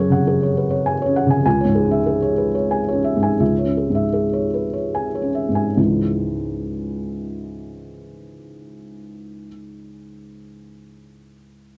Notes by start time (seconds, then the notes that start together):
Already playing: F#2 C#4 C#5 F#5 C#6 G#6
0.00 G#4
0.10 C#3 F#5
0.27 G#4
0.43 C#5
0.57 B4
0.71 C#5
0.86 G#5
1.02 C#5
1.06 C#4
1.16 F#5
1.27 C#3 G#5
1.46 C#2 G#5
1.61 C#5
1.65 G#2
1.75 G#4
1.86 C#4
1.91 E5
2.06 G#4
2.22 C#5
2.38 B4
2.55 C#5
2.71 G#5
2.88 C#5
2.92 C#4
3.04 E5
3.16 G#2
3.23 G#5
3.40 C#2 E5
3.59 C#5
3.65 C#4
3.77 G#4
3.90 G#2
3.95 E5
4.13 G#4
4.33 C#5
4.54 B4
4.73 C#5
4.95 G#5
5.15 C#5
5.22 C#4
5.35 E5
5.49 G#2
5.55 G#5
5.77 C#2 G#2 E3 G#3 C#4 E4